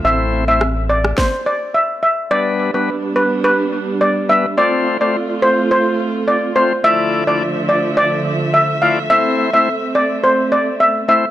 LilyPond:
<<
  \new Staff \with { instrumentName = "Steel pan" } { \time 4/4 \key a \minor \tempo 4 = 106 e''16 r8 e''16 r8 d''16 r16 c''16 r16 d''16 r16 e''16 r16 e''16 r16 | d''16 r8 b'16 r8 b'16 r16 b'8. r16 d''16 r16 e''16 r16 | d''16 r8 d''16 r8 c''16 r16 c''8. r16 d''16 r16 c''16 r16 | e''16 r8 d''16 r8 d''16 r16 d''8. r16 e''16 r16 f''16 r16 |
e''16 r8 e''16 r8 d''16 r16 c''16 r16 d''16 r16 e''16 r16 e''16 r16 | }
  \new Staff \with { instrumentName = "Tonewheel organ" } { \time 4/4 \key a \minor <a c' e' c''>8. <a c' e' c''>16 r2. | <g b d' b'>8. <g b d' b'>16 r2 r8 <g b d' b'>16 r16 | <a c' f' c''>8. <a c' f' c''>16 r2 r8 <a c' f' c''>16 r16 | <a e' f' d''>8. <a e' f' d''>16 r2 r8 <a e' f' d''>16 r16 |
<a c' e' c''>8. <a c' e' c''>16 r2 r8 <a c' e' c''>16 r16 | }
  \new Staff \with { instrumentName = "String section" } { \time 4/4 \key a \minor << { <c' e''>2 r2 | <b d'>1 | <c' f'>1 | <d f e''>1 |
c'1 | } \\ { a2 r2 | g1 | a1 | a1~ |
a1 | } >> }
  \new Staff \with { instrumentName = "Analog synth bass" } { \clef bass \time 4/4 \key a \minor a,,2 r2 | r1 | r1 | r1 |
r1 | }
  \new DrumStaff \with { instrumentName = "Drums" } \drummode { \time 4/4 r4 ss8. ss16 <bd sn>4 r4 | r4 r4 r4 r4 | r4 r4 r4 r4 | r4 r4 r4 r4 |
r4 r4 r4 r4 | }
>>